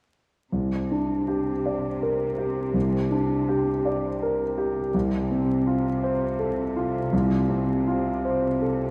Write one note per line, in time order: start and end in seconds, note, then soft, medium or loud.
0.52 2.70 C2 soft
0.52 4.90 C3 soft
0.91 1.50 D4 soft
1.28 1.87 G4 soft
1.66 2.24 D5 soft
2.02 2.61 A#4 soft
2.38 2.97 G4 soft
2.74 4.89 C2 soft
3.11 3.70 D4 soft
3.49 4.07 G4 soft
3.85 4.43 D5 soft
4.22 4.80 A#4 soft
4.58 4.94 G4 soft
4.94 7.09 C2 soft
4.94 8.91 C3 soft
5.31 5.89 C4 soft
5.67 6.25 F4 soft
6.03 6.61 C5 soft
6.39 6.98 A4 soft
6.76 7.35 F4 soft
7.13 8.91 C2 soft
7.49 8.09 C4 soft
7.87 8.47 F4 soft
8.25 8.85 C5 soft
8.61 8.91 A4 soft